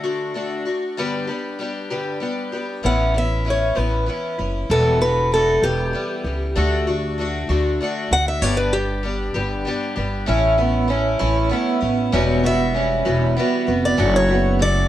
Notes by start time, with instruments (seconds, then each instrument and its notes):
0.04 twelve-string acoustic guitar D3 A3 D4 F#4
0.34 twelve-string acoustic guitar D3 A3 D4 F#4
0.65 twelve-string acoustic guitar A3 D4 F#4
0.97 twelve-string acoustic guitar G2 D3 G3 B3 D4 G4
1.27 twelve-string acoustic guitar G3 B3 D4 G4
1.59 twelve-string acoustic guitar G3 B3 D4 G4
1.90 twelve-string acoustic guitar G2 D3 G3 B3 D4 G4
2.20 twelve-string acoustic guitar G3 B3 D4 G4
2.52 twelve-string acoustic guitar G3 B3 D4 G4
2.83 upright bass A1, twelve-string acoustic guitar A2 E3 B3 C#4 E4, steel-string acoustic guitar F#5
3.14 twelve-string acoustic guitar B3 C#4 E4, steel-string acoustic guitar E5
3.45 twelve-string acoustic guitar E3 B3 C#4 E4
3.50 steel-string acoustic guitar C#5
3.75 upright bass A1, twelve-string acoustic guitar A2 E3 B3 C#4 E4, steel-string acoustic guitar B4
4.06 twelve-string acoustic guitar E3 B3 C#4 E4
4.38 upright bass F#1, twelve-string acoustic guitar B3 C#4 E4
4.70 upright bass E1, twelve-string acoustic guitar E2 B2 E3 G3 B3 F#4, steel-string acoustic guitar A4
5.01 twelve-string acoustic guitar E3 G3 B3 F#4, steel-string acoustic guitar B4
5.32 twelve-string acoustic guitar E3 G3 B3 F#4, steel-string acoustic guitar A4
5.62 upright bass E1, twelve-string acoustic guitar E2 B2 E3 G3 B3, steel-string acoustic guitar G4
5.93 twelve-string acoustic guitar E3 G3 B3
6.24 upright bass C#2, twelve-string acoustic guitar E3 G3 B3
6.56 upright bass D2, twelve-string acoustic guitar D3 A3 D4 F#4
6.87 twelve-string acoustic guitar A3 D4 F#4
7.18 twelve-string acoustic guitar D3 A3 D4 F#4
7.49 upright bass D2, twelve-string acoustic guitar D3 A3 D4 F#4
7.81 twelve-string acoustic guitar D3 A3 D4 F#4
8.11 upright bass D2, twelve-string acoustic guitar A3 D4 F#4, steel-string acoustic guitar F#5
8.28 steel-string acoustic guitar E5
8.42 upright bass G1, twelve-string acoustic guitar G2 D3 G3 B3 D4 G4, steel-string acoustic guitar C#5
8.57 steel-string acoustic guitar B4
8.72 twelve-string acoustic guitar G3 B3 D4 G4, steel-string acoustic guitar G4
9.03 twelve-string acoustic guitar G3 B3 D4 G4
9.34 upright bass G1, twelve-string acoustic guitar G2 D3 G3 B3 D4 G4
9.65 twelve-string acoustic guitar G3 B3 D4 G4
9.96 upright bass G1, twelve-string acoustic guitar G3 B3 D4 G4
10.26 upright bass A1, twelve-string acoustic guitar A2 E3 A3 C#4 E4, clean electric guitar C#4
10.58 twelve-string acoustic guitar A3 C#4 E4, clean electric guitar B3
10.88 twelve-string acoustic guitar E3 A3 C#4 E4, clean electric guitar C#4
11.19 upright bass A1, twelve-string acoustic guitar A2 E3 A3 C#4 E4
11.49 twelve-string acoustic guitar E3 A3 C#4 E4, clean electric guitar B3
11.81 upright bass A1, twelve-string acoustic guitar A3 C#4 E4
12.12 upright bass E1, twelve-string acoustic guitar E2 B2 E3 G3 B3 F#4, clean electric guitar C#4
12.44 twelve-string acoustic guitar E3 G3 B3 F#4, clean electric guitar B3, steel-string acoustic guitar E5
12.74 twelve-string acoustic guitar E3 G3 B3 F#4, clean electric guitar C#4
13.05 upright bass E1, twelve-string acoustic guitar E2 B2 E3 G3 B3 F#4
13.37 twelve-string acoustic guitar E3 G3 B3 F#4, clean electric guitar B3
13.67 upright bass F1, twelve-string acoustic guitar E3 G3 B3 F#4
13.85 steel-string acoustic guitar D5
13.97 upright bass F#1, twelve-string acoustic guitar F#3 A3 D4 F#4, clean electric guitar C#4
14.16 steel-string acoustic guitar C#5
14.29 twelve-string acoustic guitar A3 D4 F#4, clean electric guitar B3
14.59 clean electric guitar C#3, twelve-string acoustic guitar F#3 A3 F#4, steel-string acoustic guitar D5